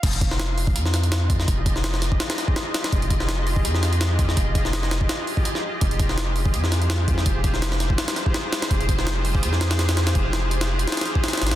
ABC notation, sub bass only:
X:1
M:4/4
L:1/16
Q:"Swing 16ths" 1/4=166
K:Fm
V:1 name="Sub bass" clef=bass
F,,,8 F,,8 | F,,,8 z8 | F,,,8 F,,8 | F,,,8 z8 |
F,,,8 F,,8 | F,,,8 z8 | F,,,8 F,,8 | F,,,8 z6 A,,, F,, |]